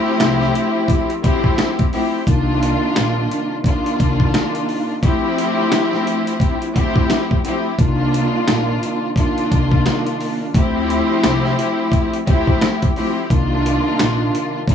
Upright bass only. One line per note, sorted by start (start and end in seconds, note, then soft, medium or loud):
0.20 0.48 C2 medium
1.24 1.52 D2 medium
2.27 2.72 C2 loud
2.96 3.24 A#1 medium
4.00 4.28 C2 medium
7.79 8.23 C2 loud
8.48 8.76 A#1 medium
9.52 9.79 C2 medium
10.54 10.99 D2 loud
11.24 11.52 C2 medium
12.27 12.55 D2 medium
13.30 13.75 C2 loud
13.99 14.27 A#1 medium